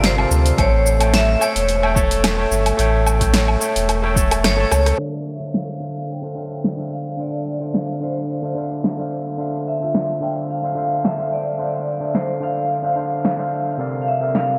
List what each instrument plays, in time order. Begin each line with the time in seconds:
Already playing: sub bass G1, tine electric piano C3 C4 F4 A4 A#4 E5
0.04 vibraphone C5, snare, open hi-hat, cabasa
0.17 tine electric piano C3 C4 F4 A4 A#4 D5, low woodblock
0.31 sub bass D2, cabasa
0.46 open hi-hat, cabasa
0.57 sub bass A1, tine electric piano A3 A4 C#5 E5 G5, vibraphone C#5, kick, open hi-hat, cabasa, low woodblock
0.86 cabasa
0.99 tine electric piano A3 A4 C#5 E5 G5, open hi-hat, cabasa, low woodblock
1.14 vibraphone E5, snare, open hi-hat, cabasa
1.39 tine electric piano A3 A4 C#5 E5 G5, vibraphone C#5, cabasa, low woodblock
1.56 sub bass E1, open hi-hat, cabasa
1.69 open hi-hat, cabasa
1.82 tine electric piano A3 A4 C#5 E5 G5, low woodblock
1.95 tine electric piano A3 A4 C#5 E5 A5, kick, cabasa
2.11 open hi-hat, cabasa
2.24 snare, open hi-hat, cabasa, low woodblock
2.37 tine electric piano A3 A4 C#5 E5 G5
2.51 sub bass G1, cabasa
2.66 open hi-hat, cabasa, low woodblock
2.77 sub bass A1, tine electric piano A3 A4 C#5 E5 G5, open hi-hat, cabasa
3.07 cabasa, low woodblock
3.19 tine electric piano A3 A4 C#5 E5 G5, kick, open hi-hat, cabasa
3.34 snare, open hi-hat, cabasa
3.48 low woodblock
3.60 tine electric piano A3 A4 C#5 E5 G5, cabasa
3.76 sub bass E1, open hi-hat, cabasa
3.89 cross-stick, open hi-hat, cabasa, low woodblock
4.02 tine electric piano A3 A4 C#5 E5 G5, cross-stick
4.15 tine electric piano A3 A4 C#5 E5 A5, kick, cabasa
4.31 cross-stick, open hi-hat, cabasa, low woodblock
4.44 sub bass G1, vibraphone C#5, cross-stick, snare, open hi-hat, cabasa
4.57 tine electric piano A3 A4 C#5 E5 A5
4.71 sub bass C#2, cross-stick, cabasa, low woodblock
4.86 cross-stick, open hi-hat, cabasa
4.97 tine electric piano D3 D4 C5
5.27 vibraphone E5, cabasa
5.40 tine electric piano D3 D4 C5 E5 F5, cabasa
5.54 vibraphone F5, snare, cabasa
5.80 tine electric piano D3 D4 C5 E5 F5
6.11 vibraphone G5
6.22 tine electric piano D3 D4 C5 E5 F5
6.35 tine electric piano D3 D4 C5 E5 F5
6.52 cabasa
6.64 snare, cabasa
6.77 tine electric piano D3 D4 C5 E5 F5
6.93 vibraphone F5
7.17 tine electric piano D3 D4 C5 E5 F5, vibraphone D5
7.47 cabasa
7.60 tine electric piano D3 D4 C5 E5 F5, cabasa
7.74 snare
8.00 tine electric piano D3 D4 C5 E5 F5, vibraphone C5, cabasa
8.17 cabasa
8.42 tine electric piano D3 D4 C5 E5 F5
8.55 tine electric piano D3 D4 C5 E5 F5, cabasa
8.72 cabasa
8.84 snare
8.98 tine electric piano D3 D4 C5 E5 F5
9.12 cabasa
9.27 cabasa
9.37 tine electric piano D3 D4 C5 E5 F5, cabasa
9.67 vibraphone E5, cabasa
9.80 tine electric piano D3 D4 F4 C5 E5, cabasa
9.95 snare
10.20 tine electric piano D3 D4 C5 E5 F5, vibraphone G5, cabasa
10.37 cabasa
10.50 vibraphone F5, cabasa
10.62 tine electric piano D3 D4 C5 E5 F5
10.75 tine electric piano D3 D4 C5 E5 F5, cabasa
10.92 cabasa
11.05 vibraphone E5, snare
11.17 tine electric piano D3 D4 C5 E5 F5
11.28 vibraphone E5
11.33 vibraphone D5, cabasa
11.47 cabasa
11.58 tine electric piano D3 D4 C5 E5 F5, cabasa
11.88 cabasa
12.00 tine electric piano D3 D4 C5 E5 F5, cabasa
12.15 vibraphone C5, snare, cabasa
12.40 tine electric piano D3 D4 C5 D5 F5, vibraphone F5, cabasa
12.57 cabasa
12.70 cabasa
12.83 tine electric piano D3 D4 C5 E5 F5
12.95 tine electric piano D3 D4 C5 D5 F5, cabasa
13.12 cabasa
13.25 snare
13.37 tine electric piano D3 D4 C5 E5 F5
13.53 cabasa
13.67 cabasa
13.77 tine electric piano C3 C4 A4 A#4 D5 F5, cabasa
14.02 vibraphone F5
14.08 vibraphone E5, cabasa
14.20 tine electric piano C3 C4 A4 A#4 D5 F5, cabasa
14.35 vibraphone F5, snare, cabasa